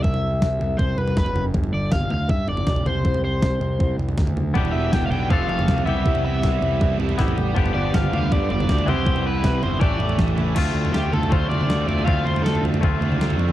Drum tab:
CC |----------------|----------------|----------------|----------------|
SD |----o-------o---|----o-------o---|----o-------o---|----o-------o---|
T2 |--------------o-|-----o-----o--o-|--------------o-|-----o-----o--o-|
FT |oo----o-o-oo-oo-|oo----o-o-oo-oo-|oo----o-o-oo-oo-|oo----o-o-oo-oo-|
BD |o---o---o---o---|o---o---o---o---|o---o---o---o---|o---o---o---o---|

CC |----------------|----------------|----------------|x---------------|
SD |----o-------o---|----o-------o---|----o-------o---|----o-------o---|
T2 |--------------o-|-----o-----o--o-|--------------o-|------o---oo---o|
FT |oo----o-o-oo-oo-|oo----o-o-oo-oo-|oo----o-o-oo-oo-|o--o--ooo-o---o-|
BD |o---o---o---o---|o---o---o---o---|o---o---o---o---|o-------o-------|

CC |----------------|
SD |----o-------o---|
T2 |-----------o---o|
FT |o-oo-oooo-o--oo-|
BD |o-------o-------|